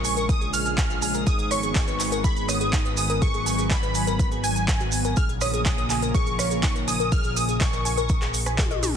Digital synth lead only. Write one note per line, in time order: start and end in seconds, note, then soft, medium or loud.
0.05 0.27 C#6 medium
0.29 0.52 D#6 loud
0.53 1.23 F6 loud
1.27 1.52 D#6 loud
1.51 2.26 C#6 loud
2.24 2.50 B5 loud
2.48 2.97 D#6 loud
2.97 3.23 D#6 loud
3.22 3.72 C#6 loud
3.70 4.45 B5 loud
4.44 5.16 G#5 loud
5.17 5.28 F6 loud
5.41 6.10 D#6 loud
6.14 6.60 C#6 loud
6.63 6.74 C#6 loud
6.88 7.14 D#6 loud
7.12 7.38 F6 loud
7.36 7.60 D#6 loud
7.61 8.79 C#6 loud